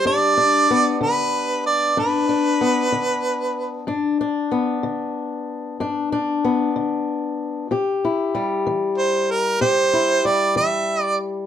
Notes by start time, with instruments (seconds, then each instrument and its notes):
Already playing: steel-string acoustic guitar G3 G4
0.05 steel-string acoustic guitar G2 D4, harmonica D5
0.37 steel-string acoustic guitar D4
0.71 steel-string acoustic guitar B3
1.01 steel-string acoustic guitar D3, harmonica B4
1.66 harmonica D5
1.97 steel-string acoustic guitar G2 D4, harmonica B4
2.29 steel-string acoustic guitar D4
2.61 steel-string acoustic guitar B3
2.92 steel-string acoustic guitar D3
3.87 steel-string acoustic guitar G2 D4
4.21 steel-string acoustic guitar D4
4.51 steel-string acoustic guitar B3
4.83 steel-string acoustic guitar D3
5.80 steel-string acoustic guitar G2 D4
6.12 steel-string acoustic guitar D4
6.44 steel-string acoustic guitar B3
6.76 steel-string acoustic guitar D3
7.71 steel-string acoustic guitar C3 G4
8.05 steel-string acoustic guitar E4
8.35 steel-string acoustic guitar G3
8.67 steel-string acoustic guitar E3
8.98 harmonica C5
9.31 harmonica A#4
9.61 steel-string acoustic guitar C3 G4, harmonica C5
9.93 steel-string acoustic guitar E4
10.25 steel-string acoustic guitar G3, harmonica D5
10.56 steel-string acoustic guitar E3, harmonica E5
11.03 harmonica D5